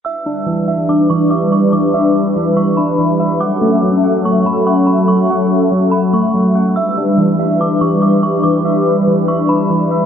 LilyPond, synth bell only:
\new Staff \with { instrumentName = "Synth bell" } { \time 4/4 \key e \dorian \tempo 4 = 143 e'''4 r4 d'''8 cis'''8 d'''8 cis'''8 | d'''4 r4 cis'''8 b''4. | d'''4 r4 cis'''8 b''8 cis'''8 b''8 | cis'''4 r4 b''8 cis'''8 r4 |
e'''4 r4 d'''8 cis'''8 d'''8 cis'''8 | d'''4 r4 cis'''8 b''4. | }